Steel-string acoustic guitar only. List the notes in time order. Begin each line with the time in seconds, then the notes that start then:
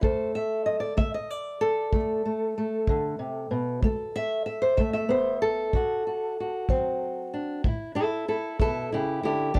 0.01 D3 A3 A4 C5
0.35 E5
0.66 D#5
0.80 D5
0.97 A3 E5
1.14 D#5
1.30 D5
1.61 A4
1.92 D3 A3
2.25 A3
2.58 A3
2.89 D3
3.19 C3
3.51 B2
3.84 A3 A4
4.16 E5
4.46 E5
4.62 C5
4.77 A3 E5
4.93 E5
5.09 B3 C5
5.42 A4
5.74 D3 F#4
6.07 F#4
6.40 F#4
6.70 F#3 C4
7.34 D4
7.65 A2 E4
7.95 E4 A4
8.28 E4 A4
8.60 B2 E4 A4
8.92 C#3 E4 G4
9.23 D3 E4 G4
9.54 E3 D4 G4